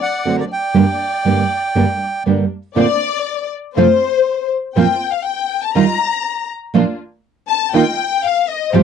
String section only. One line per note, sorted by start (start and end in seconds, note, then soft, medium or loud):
0.25 0.47 F#3 soft
0.25 0.47 C4 soft
0.25 0.47 D4 soft
0.76 0.97 G3 medium
0.76 0.97 A#3 medium
0.76 0.97 D4 medium
1.25 1.47 G3 soft
1.25 1.47 A#3 soft
1.25 1.47 D4 soft
1.76 1.97 G3 medium
1.76 1.97 A#3 soft
1.76 1.97 D4 medium
2.26 2.47 G3 soft
2.26 2.47 A#3 soft
2.26 2.48 D4 soft
2.76 2.97 A#3 medium
2.76 2.97 C4 medium
2.76 2.97 D4 medium
3.76 3.97 A3 medium
3.76 3.97 C4 medium
3.76 3.98 F4 medium
4.75 4.97 A#3 medium
4.75 4.97 C4 medium
4.75 4.97 F4 medium
5.75 5.96 G3 medium
5.75 5.96 D#4 medium
5.75 5.96 F4 medium
6.74 6.95 A#3 medium
6.74 6.95 D4 medium
6.74 6.96 F4 medium
7.73 7.94 A#3 medium
7.73 7.94 D#4 medium
7.73 7.94 F4 medium
8.73 8.83 A3 medium
8.73 8.83 F4 medium
8.73 8.83 G4 medium